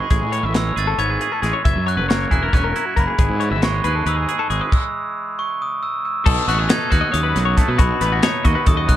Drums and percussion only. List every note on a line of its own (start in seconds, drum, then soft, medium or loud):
0.10 kick medium
0.10 closed hi-hat medium
0.33 closed hi-hat medium
0.54 snare loud
0.54 closed hi-hat medium
0.77 closed hi-hat medium
0.99 closed hi-hat medium
1.21 closed hi-hat medium
1.43 snare soft
1.43 closed hi-hat medium
1.65 kick loud
1.65 closed hi-hat medium
1.88 closed hi-hat medium
2.10 snare loud
2.10 closed hi-hat medium
2.31 kick medium
2.31 closed hi-hat soft
2.53 kick medium
2.53 snare soft
2.53 closed hi-hat medium
2.76 closed hi-hat medium
2.97 kick medium
2.97 closed hi-hat soft
3.19 kick loud
3.19 closed hi-hat medium
3.41 closed hi-hat medium
3.62 snare loud
3.62 closed hi-hat medium
3.84 closed hi-hat medium
4.07 closed hi-hat medium
4.29 closed hi-hat medium
4.50 closed hi-hat medium
4.72 kick medium
4.72 crash medium
6.26 kick loud
6.26 crash loud
6.49 snare soft
6.49 closed hi-hat medium
6.70 snare loud
6.70 closed hi-hat loud
6.92 kick medium
6.92 snare soft
6.92 closed hi-hat medium
7.14 closed hi-hat medium
7.36 snare soft
7.36 closed hi-hat medium
7.57 kick medium
7.57 snare soft
7.57 closed hi-hat medium
7.79 kick loud
7.79 closed hi-hat loud
8.01 snare soft
8.01 closed hi-hat medium
8.23 snare loud
8.23 closed hi-hat medium
8.45 kick medium
8.45 closed hi-hat medium
8.66 kick loud
8.66 closed hi-hat medium
8.89 kick medium
8.89 closed hi-hat medium